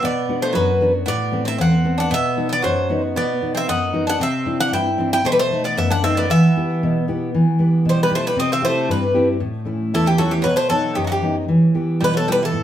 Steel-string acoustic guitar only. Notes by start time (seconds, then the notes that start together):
0.04 B2
0.29 B3 D4 F#4
0.56 F#2
0.81 B3 D4 F#4
1.06 A2
1.32 B3 C4 A4
1.59 E2
1.84 B3 C4 A4
2.11 B2
2.37 B3 D#4 F#4
2.64 F#2
2.90 B3 D#4 F#4
3.16 B2
3.42 B3 D#4 F#4
3.68 F#2
3.93 B3 D#4 F#4
4.20 C3
4.46 C4 D4 E4
4.72 G2
4.98 C4 D4 E4
5.24 B2
5.51 A3 B3 D#4
5.77 F#2
6.03 A3 B3 D#4
6.30 E3
6.57 B3 E4 G4
6.83 B2
7.08 B3 E4 G4
7.34 E3
7.59 B3 E4 G4
7.85 B2
8.10 B3 E4 G4
8.36 C3
8.62 C4 E4 G4
8.89 G2
9.14 C4 E4 G4
9.40 A2
9.65 A3 C#4 E4
9.94 E2
10.19 A3 C#4 E4
10.45 B2
10.71 F#3 B3 D#4
10.97 F#2
11.22 F#3 B3 D#4
11.48 E3
11.75 B3 E4 G4
12.02 B2
12.27 B3 E4 G4
12.54 A2